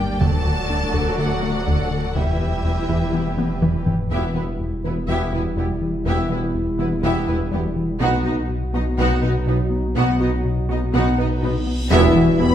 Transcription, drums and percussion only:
0.21 taiko
0.94 taiko
1.68 taiko
2.16 taiko
2.89 taiko
3.38 taiko high
3.62 taiko mid
3.87 taiko low
11.91 taiko

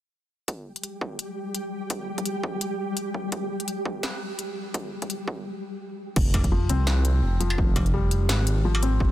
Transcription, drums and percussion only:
0.48 kick, closed hi-hat
0.76 closed hi-hat
0.83 closed hi-hat
1.01 kick
1.19 closed hi-hat
1.55 closed hi-hat
1.90 kick, closed hi-hat
2.18 kick, closed hi-hat
2.26 closed hi-hat
2.44 kick
2.61 closed hi-hat
2.97 closed hi-hat
3.14 kick
3.32 kick, closed hi-hat
3.60 closed hi-hat
3.68 closed hi-hat
3.85 kick
4.03 snare, closed hi-hat
4.39 closed hi-hat
4.74 kick, closed hi-hat
5.02 kick, closed hi-hat
5.10 closed hi-hat
5.28 kick
6.16 kick, crash
6.34 kick, closed hi-hat, struck metal
6.44 kick, closed hi-hat
6.69 closed hi-hat
6.87 snare
7.05 closed hi-hat
7.41 closed hi-hat
7.50 struck metal
7.58 kick
7.76 kick, closed hi-hat, struck metal
7.86 closed hi-hat
8.11 closed hi-hat
8.29 snare
8.47 closed hi-hat
8.75 struck metal
8.83 closed hi-hat
9.00 kick

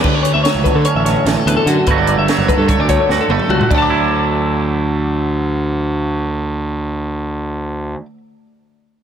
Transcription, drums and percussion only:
0.04 kick, crash
0.25 closed hi-hat
0.45 snare, closed hi-hat
0.65 kick, closed hi-hat
0.85 closed hi-hat
1.06 snare, closed hi-hat
1.26 snare, closed hi-hat
1.48 closed hi-hat
1.67 closed hi-hat
1.87 kick, closed hi-hat
2.07 closed hi-hat
2.28 snare, closed hi-hat
2.48 kick, closed hi-hat
2.69 kick, closed hi-hat
2.89 kick, closed hi-hat
3.10 snare
3.30 high tom
3.39 mid tom
3.50 mid tom
3.61 floor tom
3.71 kick, crash

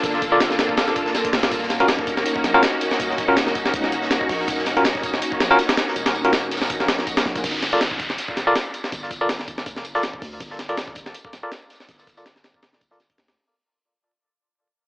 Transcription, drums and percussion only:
0.04 kick, closed hi-hat, tambourine
0.13 snare
0.22 kick, closed hi-hat, tambourine
0.40 snare, closed hi-hat, tambourine
0.51 snare
0.59 snare, closed hi-hat, tambourine
0.69 kick
0.77 snare, closed hi-hat, tambourine
0.88 snare
0.95 kick, closed hi-hat, tambourine
1.06 snare
1.15 snare, closed hi-hat, tambourine
1.25 kick, closed hi-hat
1.33 snare, closed hi-hat, open hi-hat
1.43 snare, closed hi-hat
1.51 kick, closed hi-hat, tambourine
1.62 snare
1.70 snare, closed hi-hat, tambourine
1.80 closed hi-hat
1.88 snare, closed hi-hat, tambourine
1.99 kick, snare
2.07 kick, closed hi-hat, tambourine
2.17 snare
2.26 closed hi-hat, tambourine
2.36 kick
2.44 snare, closed hi-hat, tambourine
2.63 snare, closed hi-hat, tambourine
2.81 closed hi-hat, tambourine
2.91 snare
3.00 kick, closed hi-hat, tambourine
3.10 snare
3.18 kick, closed hi-hat, tambourine
3.36 snare, closed hi-hat, tambourine
3.47 snare
3.55 kick, closed hi-hat, tambourine
3.65 snare
3.74 kick, closed hi-hat, tambourine
3.84 snare
3.92 closed hi-hat, tambourine
4.02 snare
4.11 snare, closed hi-hat, tambourine
4.21 kick
4.29 kick, closed hi-hat, open hi-hat
4.48 kick, closed hi-hat, tambourine
4.58 snare
4.66 snare, closed hi-hat, tambourine
4.77 closed hi-hat
4.84 snare, closed hi-hat, tambourine
4.95 kick, snare
5.03 kick, closed hi-hat, tambourine
5.14 snare
5.22 closed hi-hat, tambourine
5.32 kick
5.40 snare, closed hi-hat, tambourine
5.59 snare, closed hi-hat, tambourine
5.69 snare, closed hi-hat
5.77 snare, closed hi-hat, tambourine
5.88 snare
5.96 closed hi-hat, tambourine
6.06 snare, closed hi-hat
6.15 tambourine
6.25 closed hi-hat
6.32 snare, closed hi-hat, tambourine
6.51 snare, closed hi-hat, tambourine
6.56 snare, tambourine
6.61 snare, tambourine
6.66 snare, tambourine
6.70 kick, closed hi-hat, tambourine
6.80 snare
6.88 snare, closed hi-hat, tambourine
6.99 snare
7.07 kick, closed hi-hat, tambourine
7.17 snare, closed hi-hat, tambourine
7.25 snare
7.36 kick, closed hi-hat, tambourine
7.44 kick, closed hi-hat, tambourine
7.55 snare
7.62 snare, closed hi-hat, tambourine
7.72 closed hi-hat
7.81 snare, closed hi-hat, tambourine
7.91 kick, snare
8.00 kick, closed hi-hat, tambourine
8.10 snare
8.18 closed hi-hat, tambourine
8.28 kick
8.37 snare, closed hi-hat, tambourine
8.55 snare, closed hi-hat, tambourine
8.74 closed hi-hat, tambourine
8.84 snare
8.92 kick, closed hi-hat, tambourine
9.03 snare
9.11 kick, closed hi-hat, tambourine
9.29 snare, closed hi-hat, tambourine
9.39 snare
9.48 kick, closed hi-hat, tambourine
9.58 snare
9.66 kick, closed hi-hat, tambourine
9.76 snare
9.85 closed hi-hat, tambourine
9.95 snare
10.03 snare, closed hi-hat, tambourine
10.14 kick
10.22 kick, closed hi-hat, open hi-hat
10.40 kick, closed hi-hat, tambourine
10.51 snare
10.59 snare, closed hi-hat, tambourine
10.69 closed hi-hat
10.77 snare, closed hi-hat, tambourine
10.88 kick, snare
10.95 kick, closed hi-hat, tambourine
11.06 snare
11.14 closed hi-hat, tambourine
11.25 kick
11.33 snare, closed hi-hat, tambourine
11.52 snare, closed hi-hat, tambourine
11.70 snare, closed hi-hat, tambourine
11.75 snare, tambourine
11.80 snare, tambourine
11.89 kick, snare, closed hi-hat, tambourine
11.98 snare, tambourine
12.07 kick, snare, closed hi-hat, tambourine
12.17 snare, tambourine
12.26 snare, closed hi-hat, tambourine
12.36 snare
12.44 snare, closed hi-hat, tambourine
12.54 kick
12.62 snare, closed hi-hat, tambourine
12.73 snare
12.81 kick, closed hi-hat, tambourine
12.91 snare
13.00 snare, closed hi-hat, tambourine
13.10 kick, closed hi-hat
13.18 snare, closed hi-hat, open hi-hat
13.28 snare, closed hi-hat

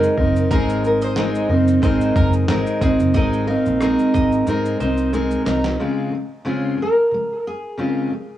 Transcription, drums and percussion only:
0.03 shaker
0.18 kick
0.36 shaker
0.51 kick, shaker
0.70 shaker
0.84 shaker
1.02 shaker
1.16 snare, shaker
1.35 shaker
1.68 shaker
1.83 kick, shaker
2.01 shaker
2.16 kick, shaker
2.33 shaker
2.48 snare, shaker
2.67 shaker
2.82 kick, snare, shaker
3.00 shaker
3.14 kick, shaker
3.33 shaker
3.66 shaker
3.81 cross-stick, shaker
3.99 shaker
4.14 kick, shaker
4.32 shaker
4.47 shaker
4.65 shaker
4.80 shaker
4.97 shaker
5.13 shaker
5.31 shaker
5.46 snare, shaker
5.64 snare, shaker

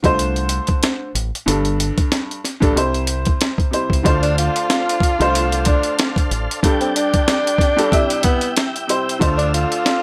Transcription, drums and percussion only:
0.04 kick, closed hi-hat
0.19 closed hi-hat
0.36 closed hi-hat
0.49 closed hi-hat
0.67 kick, closed hi-hat
0.83 snare, closed hi-hat
1.15 closed hi-hat
1.35 closed hi-hat
1.48 closed hi-hat
1.65 closed hi-hat
1.80 closed hi-hat
1.98 kick, closed hi-hat
2.12 snare, closed hi-hat
2.31 closed hi-hat
2.44 snare, closed hi-hat
2.62 kick, closed hi-hat
2.77 closed hi-hat
2.94 closed hi-hat
3.07 closed hi-hat
3.25 kick, closed hi-hat
3.41 snare, closed hi-hat
3.58 kick, closed hi-hat
3.73 closed hi-hat
3.90 kick, closed hi-hat
4.05 kick, closed hi-hat
4.23 closed hi-hat
4.38 closed hi-hat
4.56 closed hi-hat
4.70 snare, closed hi-hat
4.89 closed hi-hat
5.00 kick, closed hi-hat
5.21 closed hi-hat
5.35 closed hi-hat
5.52 closed hi-hat
5.65 kick, closed hi-hat
5.83 closed hi-hat
5.99 snare, closed hi-hat
6.16 kick, closed hi-hat
6.31 closed hi-hat
6.51 closed hi-hat
6.63 kick, closed hi-hat
6.81 closed hi-hat
6.96 closed hi-hat
7.14 kick, closed hi-hat
7.28 snare, closed hi-hat
7.47 closed hi-hat
7.58 kick, snare, closed hi-hat
7.79 closed hi-hat
7.92 kick, closed hi-hat
8.10 closed hi-hat
8.23 kick, closed hi-hat
8.41 closed hi-hat
8.57 snare, closed hi-hat
8.76 closed hi-hat
8.89 closed hi-hat
9.09 closed hi-hat
9.21 kick, closed hi-hat
9.39 closed hi-hat
9.54 closed hi-hat
9.72 closed hi-hat
9.86 snare, closed hi-hat

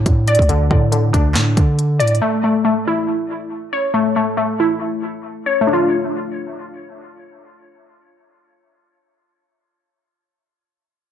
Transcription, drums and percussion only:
0.06 kick, closed hi-hat
0.28 closed hi-hat
0.35 closed hi-hat
0.39 kick, closed hi-hat
0.49 closed hi-hat
0.71 kick
0.92 closed hi-hat
1.14 kick, closed hi-hat
1.35 snare, clap, closed hi-hat
1.57 kick, closed hi-hat
1.79 closed hi-hat
2.00 closed hi-hat
2.08 closed hi-hat
2.15 closed hi-hat

